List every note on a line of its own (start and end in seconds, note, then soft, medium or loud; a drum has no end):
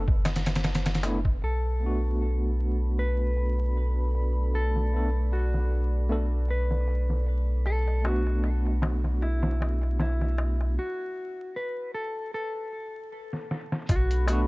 0.00 1.39 F#1 medium
0.00 0.61 B4 loud
0.00 1.47 B4 medium
0.08 kick loud
0.08 darbuka tek soft
0.25 snare medium
0.25 closed hi-hat medium
0.25 darbuka tek medium
0.36 snare medium
0.36 closed hi-hat medium
0.46 snare medium
0.46 closed hi-hat medium
0.46 darbuka tek soft
0.55 snare medium
0.55 closed hi-hat medium
0.64 snare medium
0.64 closed hi-hat medium
0.64 darbuka tek soft
0.75 snare medium
0.75 closed hi-hat medium
0.86 snare medium
0.86 closed hi-hat medium
0.86 darbuka tek soft
0.95 snare medium
0.95 closed hi-hat medium
1.03 1.17 A3 medium
1.03 1.18 B3 medium
1.03 1.18 D4 medium
1.03 1.19 E4 medium
1.03 closed hi-hat medium
1.03 darbuka tek medium
1.25 kick medium
1.25 darbuka tek soft
1.42 10.78 B1 medium
1.42 10.74 A4 medium
1.42 2.99 A4 medium
1.42 10.74 D5 medium
1.42 10.74 B5 medium
1.42 closed hi-hat medium
1.63 closed hi-hat soft
1.80 4.88 A3 medium
1.80 4.89 B3 medium
1.80 closed hi-hat medium
1.84 4.90 D4 medium
1.84 4.91 F#4 medium
2.20 closed hi-hat medium
2.42 closed hi-hat soft
2.59 closed hi-hat soft
2.98 4.55 B4 medium
2.98 open hi-hat medium
3.19 closed hi-hat soft
3.37 closed hi-hat medium
3.58 closed hi-hat soft
3.76 closed hi-hat medium
4.15 closed hi-hat medium
4.54 5.35 A4 medium
4.54 closed hi-hat medium
4.76 snare soft
4.93 5.07 A3 medium
4.93 5.08 B3 medium
4.93 5.08 D4 medium
4.93 5.09 A4 medium
4.93 closed hi-hat medium
5.32 6.46 F#4 medium
5.32 closed hi-hat medium
5.54 snare soft
5.71 closed hi-hat soft
6.09 6.24 A3 medium
6.09 6.24 B3 medium
6.09 6.25 D4 medium
6.09 6.25 A4 medium
6.09 closed hi-hat medium
6.48 7.24 B4 medium
6.48 closed hi-hat medium
6.71 snare soft
6.88 closed hi-hat medium
7.10 snare soft
7.26 closed hi-hat medium
7.66 8.06 A4 medium
7.66 closed hi-hat medium
7.66 darbuka tek soft
7.87 closed hi-hat soft
7.87 darbuka tek soft
8.02 10.76 A3 medium
8.02 10.77 B3 medium
8.02 10.78 D4 medium
8.02 9.22 F#4 medium
8.02 closed hi-hat medium
8.02 darbuka tek medium
8.08 10.79 F#4 medium
8.27 darbuka tek soft
8.43 closed hi-hat medium
8.43 darbuka tek soft
8.65 closed hi-hat soft
8.65 darbuka tek soft
8.82 snare medium
8.82 closed hi-hat medium
8.82 darbuka tek medium
9.04 snare soft
9.04 darbuka tek soft
9.21 10.00 E4 medium
9.21 closed hi-hat medium
9.21 darbuka tek soft
9.42 snare medium
9.42 closed hi-hat medium
9.61 snare soft
9.61 darbuka tek medium
9.81 closed hi-hat medium
9.81 darbuka tek soft
9.99 10.78 E4 medium
9.99 snare medium
9.99 closed hi-hat medium
9.99 darbuka tek soft
10.21 snare soft
10.21 darbuka tek soft
10.38 closed hi-hat medium
10.38 darbuka tek medium
10.61 darbuka tek soft
10.79 11.59 F#4 medium
11.56 11.92 B4 medium
11.94 12.31 A4 medium
12.34 13.47 A4 medium
13.33 snare soft
13.51 snare medium
13.72 snare medium
13.89 14.47 B1 loud
13.89 14.47 D4 medium
13.89 14.27 F#4 medium
13.89 14.47 A4 medium
13.89 14.47 B5 medium
13.89 14.47 C#6 medium
13.89 kick loud
13.89 closed hi-hat medium
13.89 darbuka tek medium
14.11 closed hi-hat soft
14.26 14.47 A3 medium
14.26 14.47 B3 medium
14.26 14.40 F#4 medium
14.26 closed hi-hat medium
14.26 darbuka tek medium
14.30 14.47 D4 medium
14.30 14.47 F#4 medium